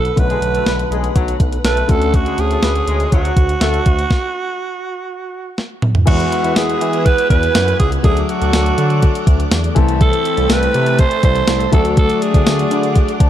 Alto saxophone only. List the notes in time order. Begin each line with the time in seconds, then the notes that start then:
Already playing: A4
0.19 B4
1.65 B4
1.90 A4
2.15 F#4
2.40 G#4
3.14 F#4
6.07 F#4
6.56 G#4
7.05 B4
7.30 B4
7.79 G#4
8.05 G#4
8.23 G#4
8.30 F#4
10.01 A4
10.52 B4
11.00 C5
11.25 C5
11.73 A4
11.98 A4
12.22 G#4